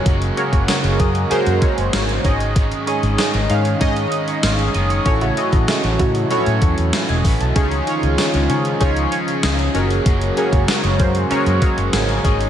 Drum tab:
HH |xxxxxxxxxxxxxxxx|xxxxxxxxxxxxxxxx|xxxxxxxxxxxxxxox|xxxxxxxxxxxxxxxx|
TB |----x-------x---|----x-------x---|----x-------x---|----x-------x---|
SD |----o-------o---|----o-------o---|----o-------o---|----o-------o---|
BD |o--o--o---o---o-|o-------o-------|o--o--o---o---o-|o-------o-------|

HH |xxxxxxxxxxxxxxxx|
TB |----x-------x---|
SD |----o-------o---|
BD |o--o--o---o---o-|